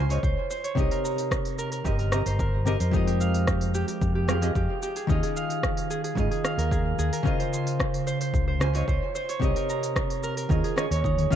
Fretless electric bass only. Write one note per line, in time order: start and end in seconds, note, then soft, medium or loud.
0.00 0.18 C#2 medium
0.23 0.34 C#2 medium
0.77 0.88 C2 medium
1.85 2.21 G1 medium
2.26 2.75 G1 medium
2.80 3.83 F2 medium
4.02 4.50 F2 medium
4.55 4.66 F2 medium
5.09 5.20 D#2 medium
6.17 6.28 G#2 medium
6.58 6.93 D#2 medium
6.98 7.09 D#2 medium
8.34 8.83 C#2 medium
8.88 8.98 C#2 medium
9.42 9.52 C2 medium
10.50 10.60 D#2 medium
10.91 11.26 D#2 loud
11.31 11.36 D#2 medium